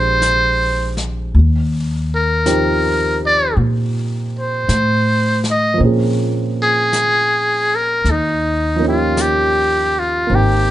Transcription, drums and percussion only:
0.22 brush sweep soft
0.22 snare soft
0.22 hi-hat pedal soft
0.97 snare soft
1.35 brush sweep soft
2.46 brush sweep soft
2.46 snare soft
2.46 hi-hat pedal soft
3.57 brush sweep soft
4.69 brush sweep soft
4.69 snare soft
4.69 hi-hat pedal soft
5.44 snare soft
5.82 brush sweep soft
6.93 brush sweep soft
6.93 snare soft
6.93 hi-hat pedal soft
8.05 brush sweep soft
8.05 snare soft
9.17 brush sweep soft
9.17 snare soft
9.17 hi-hat pedal soft
10.29 brush sweep soft

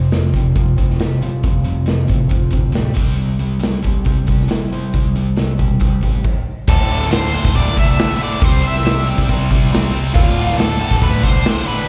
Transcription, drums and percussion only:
0.12 snare medium
0.12 open hi-hat medium
0.33 kick medium
0.33 open hi-hat soft
0.55 kick medium
0.55 open hi-hat medium
0.78 kick medium
0.78 open hi-hat soft
0.90 snare soft
1.00 snare loud
1.00 open hi-hat medium
1.22 open hi-hat soft
1.43 kick loud
1.43 open hi-hat medium
1.66 open hi-hat soft
1.87 snare medium
1.87 open hi-hat medium
2.10 kick medium
2.10 open hi-hat soft
2.31 kick medium
2.31 open hi-hat medium
2.52 kick medium
2.52 open hi-hat soft
2.75 snare loud
2.75 open hi-hat medium
2.97 kick medium
2.97 open hi-hat soft
3.18 open hi-hat medium
3.41 open hi-hat soft
3.63 snare loud
3.63 open hi-hat medium
3.84 kick medium
3.84 open hi-hat soft
4.06 kick medium
4.06 open hi-hat medium
4.28 kick medium
4.28 open hi-hat soft
4.40 snare soft
4.50 snare loud
4.50 open hi-hat medium
4.73 open hi-hat soft
4.93 kick loud
4.93 open hi-hat medium
5.15 open hi-hat soft
5.37 snare medium
5.37 open hi-hat medium
5.59 kick medium
5.59 open hi-hat soft
5.81 kick loud
5.81 open hi-hat medium
6.02 kick medium
6.02 open hi-hat soft
6.24 kick loud
6.24 crash medium
6.67 kick loud
6.67 crash loud
6.90 open hi-hat medium
7.02 snare soft
7.12 snare loud
7.12 open hi-hat medium
7.34 open hi-hat medium
7.45 kick medium
7.56 kick medium
7.56 open hi-hat medium
7.68 snare soft
7.77 kick medium
7.77 open hi-hat medium
7.99 snare loud
7.99 open hi-hat medium
8.20 open hi-hat medium
8.42 kick loud
8.42 open hi-hat medium
8.64 open hi-hat medium
8.76 snare soft
8.86 snare loud
8.86 open hi-hat medium
9.07 open hi-hat medium
9.18 kick medium
9.29 kick loud
9.29 open hi-hat medium
9.51 kick medium
9.51 open hi-hat medium
9.74 snare loud
9.74 open hi-hat medium
9.94 open hi-hat medium
10.15 kick loud
10.15 open hi-hat medium
10.38 open hi-hat medium
10.50 snare soft
10.59 snare loud
10.59 open hi-hat medium
10.81 open hi-hat medium
10.91 kick medium
11.02 kick medium
11.02 open hi-hat medium
11.23 kick medium
11.23 open hi-hat medium
11.45 snare loud
11.45 open hi-hat medium
11.67 open hi-hat medium

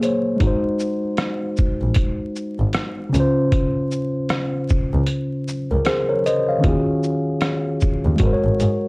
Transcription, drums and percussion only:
0.03 closed hi-hat soft
0.03 shaker soft
0.40 kick loud
0.40 closed hi-hat medium
0.80 shaker soft
1.17 cross-stick loud
1.17 closed hi-hat medium
1.57 kick medium
1.57 shaker soft
1.94 kick medium
1.94 closed hi-hat medium
2.36 shaker soft
2.73 cross-stick loud
2.73 closed hi-hat medium
3.14 closed hi-hat soft
3.14 shaker medium
3.52 kick medium
3.52 closed hi-hat medium
3.91 shaker soft
4.29 cross-stick loud
4.29 closed hi-hat medium
4.69 kick medium
4.69 shaker soft
5.06 closed hi-hat medium
5.48 shaker soft
5.85 cross-stick loud
5.85 closed hi-hat medium
6.26 closed hi-hat soft
6.26 shaker medium
6.64 kick loud
6.64 closed hi-hat medium
7.03 shaker soft
7.41 cross-stick loud
7.41 closed hi-hat medium
7.81 kick medium
7.81 shaker soft
8.18 kick medium
8.18 closed hi-hat medium
8.60 closed hi-hat soft
8.60 shaker soft

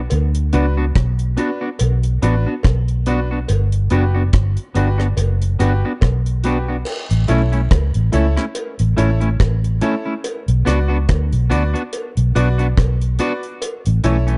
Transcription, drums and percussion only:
0.10 closed hi-hat medium
0.10 cowbell medium
0.35 closed hi-hat medium
0.53 closed hi-hat medium
0.95 kick medium
0.95 cross-stick loud
0.95 closed hi-hat medium
1.19 closed hi-hat soft
1.37 closed hi-hat medium
1.79 closed hi-hat loud
1.79 cowbell medium
2.03 closed hi-hat medium
2.23 closed hi-hat medium
2.63 kick loud
2.63 cross-stick loud
2.63 closed hi-hat medium
2.63 cowbell medium
2.88 closed hi-hat soft
3.06 closed hi-hat medium
3.48 closed hi-hat medium
3.48 cowbell medium
3.72 closed hi-hat medium
3.90 closed hi-hat medium
4.33 kick loud
4.33 cross-stick loud
4.33 closed hi-hat medium
4.57 closed hi-hat soft
4.75 closed hi-hat medium
5.00 cross-stick medium
5.17 closed hi-hat loud
5.17 cowbell medium
5.42 closed hi-hat medium
5.60 closed hi-hat medium
6.01 kick loud
6.01 cross-stick medium
6.01 closed hi-hat medium
6.01 cowbell medium
6.26 closed hi-hat soft
6.44 closed hi-hat medium
6.85 crash medium
6.85 cowbell medium
6.85 vibraslap medium
7.11 closed hi-hat medium
7.28 closed hi-hat medium
7.53 closed hi-hat soft
7.71 kick loud
7.71 cross-stick loud
7.71 closed hi-hat medium
7.71 cowbell medium
7.94 closed hi-hat soft
8.13 closed hi-hat medium
8.37 cross-stick medium
8.37 closed hi-hat soft
8.55 closed hi-hat medium
8.55 cowbell medium
8.79 closed hi-hat medium
8.98 closed hi-hat medium
9.21 closed hi-hat soft
9.40 kick loud
9.40 cross-stick loud
9.40 closed hi-hat medium
9.40 cowbell medium
9.64 closed hi-hat medium
9.81 closed hi-hat medium
10.24 closed hi-hat medium
10.24 cowbell medium
10.48 closed hi-hat medium
10.67 cross-stick medium
10.67 closed hi-hat medium
11.09 kick loud
11.09 cross-stick loud
11.09 closed hi-hat medium
11.09 cowbell medium
11.33 closed hi-hat medium
11.51 closed hi-hat medium
11.75 closed hi-hat soft
11.93 closed hi-hat medium
11.93 cowbell medium
12.17 closed hi-hat medium
12.36 closed hi-hat medium
12.59 closed hi-hat soft
12.77 kick loud
12.77 cross-stick loud
12.77 closed hi-hat medium
12.77 cowbell medium
13.02 closed hi-hat medium
13.19 closed hi-hat medium
13.43 closed hi-hat soft
13.62 closed hi-hat loud
13.62 cowbell medium
13.86 closed hi-hat medium
14.04 closed hi-hat medium
14.28 closed hi-hat soft

